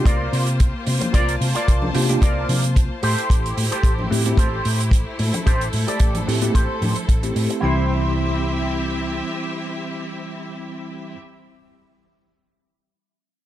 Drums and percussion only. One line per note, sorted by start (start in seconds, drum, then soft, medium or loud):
0.06 kick loud
0.06 closed hi-hat medium
0.33 open hi-hat medium
0.47 closed hi-hat medium
0.60 kick loud
0.60 closed hi-hat medium
0.86 open hi-hat medium
0.86 high conga medium
1.01 closed hi-hat medium
1.01 low conga medium
1.14 kick loud
1.14 closed hi-hat medium
1.29 closed hi-hat medium
1.41 open hi-hat medium
1.41 high conga medium
1.55 closed hi-hat medium
1.68 kick medium
1.68 closed hi-hat medium
1.82 high conga medium
1.82 low conga medium
1.95 open hi-hat loud
2.09 closed hi-hat medium
2.09 high conga medium
2.22 kick loud
2.22 closed hi-hat medium
2.49 open hi-hat loud
2.49 low conga medium
2.64 closed hi-hat medium
2.76 kick loud
2.76 closed hi-hat medium
3.03 open hi-hat loud
3.18 closed hi-hat medium
3.30 kick loud
3.30 closed hi-hat medium
3.46 closed hi-hat soft
3.58 open hi-hat loud
3.58 high conga medium
3.72 closed hi-hat medium
3.83 kick loud
3.83 closed hi-hat medium
3.98 high conga medium
3.98 low conga medium
4.12 open hi-hat loud
4.25 closed hi-hat medium
4.25 high conga medium
4.37 kick loud
4.37 closed hi-hat medium
4.65 open hi-hat medium
4.80 closed hi-hat medium
4.91 kick loud
4.91 closed hi-hat medium
5.19 open hi-hat medium
5.19 high conga medium
5.33 closed hi-hat medium
5.33 low conga medium
5.47 kick loud
5.47 closed hi-hat medium
5.61 closed hi-hat medium
5.73 open hi-hat medium
5.73 high conga medium
5.88 closed hi-hat medium
6.00 kick loud
6.00 closed hi-hat medium
6.15 closed hi-hat medium
6.15 high conga soft
6.15 low conga medium
6.29 open hi-hat loud
6.41 closed hi-hat medium
6.41 high conga medium
6.55 kick medium
6.55 closed hi-hat medium
6.82 open hi-hat medium
6.82 low conga medium
6.96 closed hi-hat medium
7.09 kick medium
7.09 closed hi-hat medium
7.23 closed hi-hat medium
7.36 open hi-hat medium
7.50 closed hi-hat medium